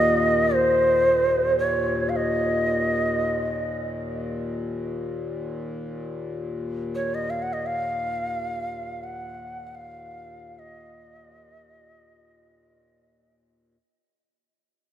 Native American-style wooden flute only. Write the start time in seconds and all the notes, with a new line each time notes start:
Already playing: D#5
0.55 C5
1.59 C#5
2.09 F5
2.16 D#5
6.95 C#5
7.15 D#5
7.30 F5
7.42 F#5
7.53 D#5
7.66 F5
9.04 F#5
9.67 F#5
9.75 F5
10.59 D#5